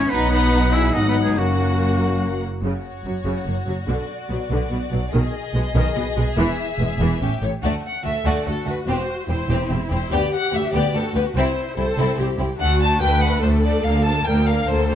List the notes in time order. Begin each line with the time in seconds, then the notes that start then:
Already playing: C#4 C#5
0.09 B1 F#3 B3 D#4 B4 F#5
0.31 B3 D#4 B4
0.72 E4 E5
0.76 G#4
0.92 G#1 F#3 B3 D#4 F#4 D#5 F#5
1.07 B3 D#4 B4
1.22 G#3 B3 G#4
1.36 F#1 F#3 A#3 C#4 F#4 F#5
2.62 F#1 F#2 C#3 F#4 C#5
3.04 F#1 F#2 F#3
3.24 F#1 F#2 C#3
3.46 F#1 F#2 A#3
3.66 F#1 F#2 F#3
3.87 B1 B2 D3 D5
4.30 B1 B2 F#3
4.50 B1 B2 D3
4.70 B1 B2 B3
4.91 B1 B2 F#3
5.12 B1 B2 D#3 G#4 D#5
5.54 B1 B2 G#3
5.75 B1 B2 D#3
5.96 B1 B2 B3
6.16 B1 B2 G#3
6.36 E1 E2 E3 E5
6.78 E1 E2 G#3
6.99 E1 E2 E3
7.20 A1 A2 C#4 G4
7.41 A1 A2 A3 C#5
7.62 D2 A3 F#4 D5
7.86 F#5
8.04 D2 A3 F#4 A4 E5
8.24 D2 A3 F#4 D5
8.45 D2 A3 F#4
8.50 A4
8.65 D2 A3 F#4
8.70 B4
8.86 E1 E2 C4 G4
8.91 C5
9.28 E1 E2 C4 E4 G4 C5
9.48 E1 E2 C4 G4
9.69 E1 E2 C4 G4
9.90 E1 E2 C4 G4 C5
10.11 D2 B3 G4 D5
10.35 F#5
10.52 D2 B3 G4 E5
10.72 D2 B3 G4 D5
10.94 D2 B3 F#4 G4 A4
11.14 D2 B3 G4 B4
11.36 C2 C4 E4 C5
11.77 C2 C4 E4 A4 C5
11.97 C2 C4 E4
12.18 C2 C4 E4 G4
12.38 C2 C4 E4
12.59 D2 A3 D4 F#4 F#5
12.81 A3 D4 A5
13.01 D2 A3 D4 B4 G5
13.21 A3 D4 F#5
13.42 D2 A3 D4 A4 C5
13.63 A3 D4 D5
13.83 D2 A#3 D4 F5
14.05 A#3 D4 A5
14.26 D2 A#3 D4 A#4 G5
14.47 A#3 D4 F5
14.67 D2 A#3 D4 A4 C5
14.88 A#3 D4 C5